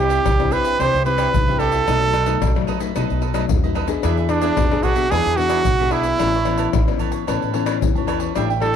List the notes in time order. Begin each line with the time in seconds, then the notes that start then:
Already playing: C2 C3 G3 G4
0.00 C4 E4
0.09 E4 G4 C5 E5, pandeiro, shaker
0.25 C2 G2, pandeiro, tamborim, shaker, surdo
0.40 G3 C4 E4, pandeiro, tamborim, shaker
0.50 E4 G4 B4 C5 E5, pandeiro, shaker
0.63 G4 C5 E5, pandeiro, shaker
0.79 C2 C3 G3 C4 E4 G4 C5 E5, pandeiro, tamborim, shaker, surdo
0.94 C2, pandeiro, shaker
1.05 G3 C4 E4 G4 B4 C5 E5, pandeiro
1.18 E4 G4 C5 E5, pandeiro, tamborim, shaker
1.34 C2 G2, pandeiro, shaker, surdo
1.48 G3 C4 E4 G4 C5 E5, pandeiro, shaker
1.59 E4 G4 A4 C5 E5, pandeiro, tamborim, shaker
1.72 G4 C5 E5, pandeiro, shaker
1.88 B1 B2 F#3 A3 D#4 A4 B4 D#5, pandeiro, tamborim, shaker, surdo
2.02 B4 D#5, pandeiro, shaker
2.13 D#4 A4 B4 D#5, pandeiro, tamborim, shaker
2.26 F#3 A3 D#4 A4 B4 D#5, pandeiro, shaker
2.42 B1 F#2, pandeiro, tamborim, shaker, surdo
2.56 F#3 A3 D#4, pandeiro, tamborim, shaker
2.67 D#4 A4 B4 D#5, pandeiro
2.80 F#3 A3 D#4 A4 B4 D#5, pandeiro, shaker
2.96 B1 B2 F#3 A3 D#4 A4 B4 D#5, pandeiro, tamborim, shaker, surdo
3.10 B1, pandeiro, shaker
3.21 D#4 A4 B4 D#5, pandeiro
3.34 F#3 A3 D#4 A4 B4 D#5, pandeiro, tamborim, shaker
3.49 D#2 F#2, pandeiro, shaker, surdo
3.64 F#3 A3 D#4 A4 B4 D#5, pandeiro, shaker
3.75 D#4 A4 B4 D#5, pandeiro, tamborim
3.88 B3 D4 G#4 A4 B4 D#5, pandeiro, shaker
4.03 E2 E3 D4 G#4 B4 E5, pandeiro, tamborim, shaker, surdo
4.17 G#4 B4 E5, pandeiro, shaker
4.29 D4 G#4 B4 E5, pandeiro, tamborim, shaker
4.41 B3 D4 G#4 B4 E5, pandeiro, shaker
4.57 E2 B2, pandeiro, tamborim, shaker, surdo
4.72 B3 D4 G#4, pandeiro, tamborim, shaker
4.83 D4 F#4 G#4 B4 E5, pandeiro, shaker, surdo
4.96 B3 D4 G#4 B4 E5, pandeiro, shaker
5.11 E2 E3 B3 D4 G#4 B4 E5, pandeiro, tamborim, shaker, surdo
5.26 E2, pandeiro, shaker
5.37 B3 D4 F#4 G#4 B4 E5, pandeiro
5.49 D4 G#4 B4 E5, pandeiro, tamborim, shaker
5.65 B1 B2, pandeiro, shaker, surdo
5.79 B3 D4 G#4 B4 E5, pandeiro, shaker
5.91 D4 E4 G#4 B4 E5, pandeiro, tamborim
6.03 G#4 B4 E5, pandeiro, shaker
6.19 A1 A2 E3 B3 C#4 A4 B4 C#5 A5, pandeiro, tamborim, shaker, surdo
6.34 B4 C#5, pandeiro, shaker
6.45 E3 B3 C#4 A4 B4 C#5 A5, pandeiro, tamborim
6.58 A4 B4 C#5 A5, pandeiro, shaker
6.73 A1, pandeiro, tamborim, shaker, surdo
6.88 E3 B3 C#4, pandeiro, tamborim, shaker
6.99 A4 B4 C#5 A5, pandeiro, shaker, surdo
7.12 B4 C#5 A5, pandeiro, shaker
7.27 A1 A2 E3 B3 C#4 A4 B4 C#5 A5, pandeiro, tamborim, shaker, surdo
7.42 A1, pandeiro, shaker
7.53 E3 B3 C#4 A4 B4 C#5 A5, pandeiro
7.66 A4 B4 C#5 A5, pandeiro, tamborim, shaker
7.82 E2 E3, pandeiro, shaker, surdo
7.96 E3 B3 C#4 B4 C#5 A5, pandeiro, shaker
8.07 A4 B4 C#5 A5, pandeiro, tamborim, shaker
8.20 B4 C#5 A5, pandeiro, shaker
8.35 A1 A2 G3 D4 E4 A4 E5 G5, pandeiro, tamborim, shaker, surdo
8.50 A4 E5 G5, pandeiro, shaker
8.61 G3 D4 E4 A4 E5 G5, pandeiro, tamborim